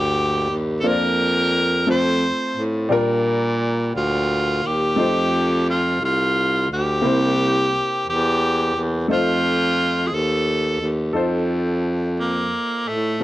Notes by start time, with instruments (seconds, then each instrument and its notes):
Already playing: baritone saxophone D2, grand piano G2 A#3 D#4 G4 D5, tenor saxophone G4
0.50 baritone saxophone D#2
0.80 grand piano A#3, tenor saxophone A4
0.84 baritone saxophone F2, grand piano D4 F4 C5, tenor saxophone A#4
0.91 grand piano D5
1.87 baritone saxophone F2, grand piano A3 C4 F4 C5, tenor saxophone C5
2.56 baritone saxophone A2
2.89 grand piano A#2 G3 D4 F4 A#4, baritone saxophone A#2
3.95 baritone saxophone D2, tenor saxophone F4
4.64 baritone saxophone D#2, tenor saxophone G4
4.96 baritone saxophone F2, grand piano A3 D#4 F4 C5
5.70 tenor saxophone F4
6.01 baritone saxophone C2
6.05 tenor saxophone F4
6.70 baritone saxophone D2, tenor saxophone G4
7.02 baritone saxophone C2, grand piano C3 A#3 E4 G4 C5
8.07 baritone saxophone E2, tenor saxophone G4
8.75 baritone saxophone E2
9.08 baritone saxophone F2, grand piano A3 D#4 F4 C5
9.13 tenor saxophone F4
10.07 tenor saxophone G#4
10.12 baritone saxophone D#2, tenor saxophone A4
10.80 baritone saxophone D#2
11.13 baritone saxophone F2, grand piano D#4 F4 A4 C5
12.19 tenor saxophone A#3
12.87 baritone saxophone A2, tenor saxophone A3
13.20 grand piano A#2 D4 A4